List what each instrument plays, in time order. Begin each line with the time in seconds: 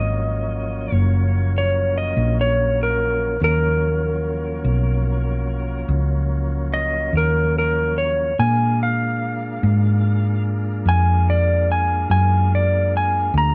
Already playing: fingered electric bass G#1, tonewheel organ F3 F#3 A#3 C#4, electric slide guitar D#5
0.92 fingered electric bass F#1, electric slide guitar C#5
1.58 electric slide guitar C#5
1.98 electric slide guitar D#5
2.17 fingered electric bass A#1
2.41 electric slide guitar C#5
2.83 electric slide guitar A#4
3.40 fingered electric bass D#2, tonewheel organ F3 F#3 A#3 C#4, electric slide guitar A#4
4.64 fingered electric bass B1
5.89 fingered electric bass C#2
6.74 electric slide guitar D#5
7.13 fingered electric bass D#2
7.17 electric slide guitar A#4
7.58 electric slide guitar A#4
7.98 electric slide guitar C#5
8.39 fingered electric bass A#2, tonewheel organ G#3 A#3 D4 F4, electric slide guitar G#5
8.83 electric slide guitar F5
9.63 fingered electric bass G#2
10.86 fingered electric bass F2, electric slide guitar G#5
11.30 electric slide guitar D5
11.72 electric slide guitar G#5
12.10 fingered electric bass F#2, electric slide guitar G#5
12.55 electric slide guitar D5
12.97 electric slide guitar G#5
13.34 fingered electric bass D2, tonewheel organ F3 G#3 A#3 D4, electric slide guitar A#5